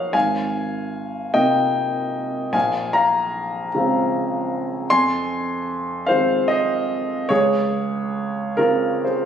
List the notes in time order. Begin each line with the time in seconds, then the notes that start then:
Already playing: F3 A#3 D#4 F#4 C5 C#5 D#5 F5 F#5
0.13 G#1 F5 G#5
1.34 C3 A#3 D#4 F4 D#5 G5
2.53 A#1 F5 G#5
2.93 F5 A#5
3.74 C#3 G#3 C4 F4
4.90 F2 G#5 C6
6.07 D#3 G#3 C4 F4 C5 F5
6.48 C5 D#5
7.29 C#2 G#4 C#5
8.57 C#3 G#3 C4 F4 A#4
9.05 G#4 C5